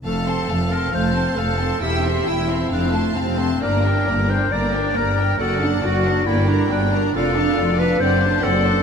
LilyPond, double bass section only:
\new Staff \with { instrumentName = "Double bass section" } { \clef bass \time 4/4 \key f \major \tempo 4 = 136 f,,4 f,,4 f,,4 f,,4 | e,,4 e,,4 f,,4 f,,4 | g,,4 g,,4 g,,4 g,,4 | fis,,4 fis,,4 g,,4 g,,4 |
\key d \dorian f,,4 f,,4 fis,,4 fis,,4 | }